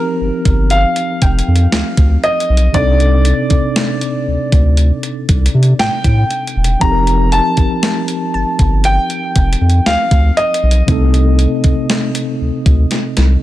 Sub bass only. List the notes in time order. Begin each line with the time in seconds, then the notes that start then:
0.21 G1
0.46 G1
1.22 F1
1.48 F2
1.73 D2
1.98 D2
2.49 B1
2.74 C2
3.51 D2
4.27 D2
4.53 D2
5.29 C2
5.54 C3
5.80 A2
6.05 A2
6.56 E1
6.81 F1
7.58 G1
8.34 G1
8.59 G1
9.36 F1
9.61 F2
9.86 D2
10.11 D2
10.63 B1
10.88 C2
11.64 D2
12.41 D2
12.66 D2
13.17 C2